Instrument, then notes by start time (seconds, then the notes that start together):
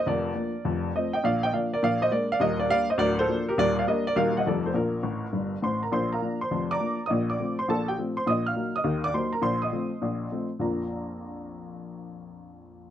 upright piano
0.06 F1 F2 A#4 D5
0.35 F3 A#3 D4
0.65 F1 F2
0.95 F3 A3 C4 C5 D#5
1.13 D#5 G5
1.23 A#1 A#2 D5 F5
1.43 D#5 G5
1.53 F3 A#3 D4 D5 F5
1.73 A#4 D5
1.83 A#1 A#2 D5 F5
2.02 C5 D#5
2.11 G#3 A#3 D4 A#4 D5
2.32 D5 F5
2.40 D#1 D#2 A#4 D#5
2.59 A#4 D5
2.70 G3 A#3 D4 D5 F5
2.90 C5 D#5
2.98 D1 D2 A#4 D5
3.19 A4 C5
3.29 F3 A#3 D4
3.49 G4 A#4
3.58 D#1 D#2 A#4 D5
3.79 D5 F5
3.87 G3 A#3 D4 A#4 D#5
4.07 A#4 D5
4.16 D#1 D#2 F#3 A#3 D#4 A#4 F5
4.37 D#5 F#5
4.46 F1 F2 G3 A3 D#4 A4 D5
4.66 A4 C5
4.74 A#1 A#2 F4 A#4
5.03 A1 A2
5.33 G1 G2
5.62 A1 A2 C5 C6
5.83 A#4 A#5
5.92 A#1 A#2 C5 C6
6.13 A#4 F5 A#5
6.22 F3 A#3 D4
6.41 C5 C6
6.51 F1 F2
6.71 D5 A#5 D6
6.80 F3 A#3 D4
7.06 D#5 D#6
7.10 A#1 A#2
7.30 D5 D6
7.39 F3 A3 C4
7.59 C5 C6
7.68 A#1 A#2 A4 A5
7.88 G4 G5
7.98 F3 A3 C4
8.17 C5 C6
8.26 A#1 A#2 D#5 D#6
8.46 F5 F6
8.55 F#3 A#3 D#4
8.76 D#5 D#6
8.84 D#2 D#3
9.04 D5 D6
9.14 F#3 A#3 D#4 C5 C6
9.33 A#4 A#5
9.42 A#1 A#2 C5 C6
9.62 D#5 C6 D#6
9.72 F3 A3 C4
10.02 A#1 A#2
10.31 F3 A3 C4
10.59 A#1 F2 F3 A#3 D4 F4 A#5